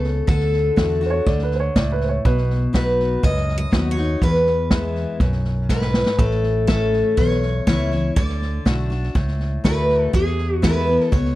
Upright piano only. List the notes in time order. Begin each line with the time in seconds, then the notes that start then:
1.06 C5
1.10 C#5
1.27 D5
1.43 B4
1.55 C5
1.60 C#5
1.76 D5
1.92 B4
2.04 C5
2.09 C#5
2.25 B4